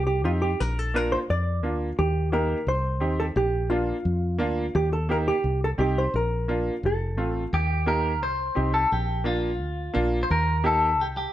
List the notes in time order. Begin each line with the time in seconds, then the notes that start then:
Already playing: C2
0.07 G4
0.24 F2 C4 D#4 F4 G4
0.42 G4
0.60 A#1 A#4
0.79 A4
0.94 A#3 D4 F4 A#4
1.12 C5
1.30 F2 D5
1.63 D2 A#3 D4 F4
1.99 D#2 G4
2.32 A#3 D#4 G4 A#4
2.67 C2 C5
3.00 D#2 C4 D#4 G4
3.20 A4
3.36 A#1 G4
3.70 A#3 D4 F4
4.05 F2
4.38 D2 A#3 D4 F4
4.75 D#2 G4
4.93 A4
5.09 A#3 D#4 G4 A#4
5.28 G4
5.44 C2
5.64 A4
5.78 C2 C4 D#4 G4
5.98 C5
6.14 A#1 A#4
6.48 A#3 D4 F4
6.83 F1 A4
7.17 A1 A3 C4 F4
7.53 D#2 G4
7.86 A#3 D#4 G4 A#4
8.22 C2 C5
8.55 C2 C4 D#4 G4
8.74 A4
8.92 A#1 G4
9.24 A#3 D4 F4
9.61 D2
9.94 A#1 A#3 D4 F4
10.23 C5
10.30 D#2 A#4
10.64 A#3 D#4 G4 A4
10.98 C2 G4
11.17 G4